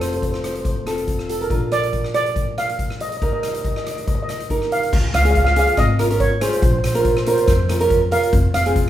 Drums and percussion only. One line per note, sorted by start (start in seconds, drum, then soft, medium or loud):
0.01 cross-stick medium
0.01 closed hi-hat medium
0.13 closed hi-hat medium
0.22 kick medium
0.22 closed hi-hat medium
0.34 cross-stick medium
0.44 cross-stick medium
0.44 closed hi-hat medium
0.55 closed hi-hat medium
0.65 kick medium
0.65 closed hi-hat medium
0.87 cross-stick medium
0.87 closed hi-hat medium
0.98 closed hi-hat medium
1.08 kick medium
1.08 closed hi-hat medium
1.19 cross-stick medium
1.29 closed hi-hat medium
1.41 closed hi-hat soft
1.50 kick medium
1.50 closed hi-hat soft
1.72 cross-stick medium
1.72 closed hi-hat medium
1.83 closed hi-hat medium
1.93 kick medium
1.93 closed hi-hat soft
2.04 cross-stick medium
2.14 cross-stick medium
2.14 closed hi-hat medium
2.26 closed hi-hat soft
2.36 kick medium
2.36 closed hi-hat soft
2.58 cross-stick medium
2.58 closed hi-hat medium
2.69 closed hi-hat soft
2.79 kick medium
2.79 closed hi-hat medium
2.90 cross-stick medium
3.00 closed hi-hat medium
3.12 closed hi-hat medium
3.22 kick medium
3.22 closed hi-hat medium
3.43 cross-stick medium
3.43 closed hi-hat medium
3.54 closed hi-hat medium
3.64 kick medium
3.64 closed hi-hat medium
3.76 cross-stick medium
3.87 cross-stick medium
3.87 closed hi-hat medium
3.98 closed hi-hat medium
4.08 kick loud
4.08 closed hi-hat medium
4.29 cross-stick medium
4.29 closed hi-hat medium
4.40 closed hi-hat medium
4.50 kick medium
4.50 closed hi-hat medium
4.62 cross-stick medium
4.72 closed hi-hat medium
4.83 closed hi-hat medium
4.93 kick loud
4.93 crash loud
5.14 cross-stick medium
5.14 closed hi-hat medium
5.26 closed hi-hat medium
5.35 kick medium
5.35 closed hi-hat medium
5.47 cross-stick medium
5.56 closed hi-hat medium
5.67 closed hi-hat medium
5.77 kick loud
5.77 cross-stick medium
5.77 closed hi-hat medium
5.99 cross-stick medium
5.99 closed hi-hat medium
6.11 closed hi-hat medium
6.20 kick medium
6.20 closed hi-hat medium
6.41 cross-stick medium
6.41 closed hi-hat medium
6.53 closed hi-hat medium
6.62 kick loud
6.62 closed hi-hat medium
6.84 cross-stick medium
6.84 closed hi-hat medium
6.95 closed hi-hat medium
7.05 kick medium
7.05 closed hi-hat medium
7.17 cross-stick medium
7.26 closed hi-hat medium
7.38 closed hi-hat medium
7.48 kick loud
7.48 cross-stick medium
7.48 closed hi-hat medium
7.69 cross-stick medium
7.69 closed hi-hat medium
7.81 closed hi-hat medium
7.90 kick medium
7.90 closed hi-hat medium
8.12 closed hi-hat medium
8.23 closed hi-hat medium
8.33 kick loud
8.33 closed hi-hat medium
8.54 cross-stick medium
8.54 closed hi-hat medium
8.66 closed hi-hat medium
8.76 kick medium
8.76 closed hi-hat medium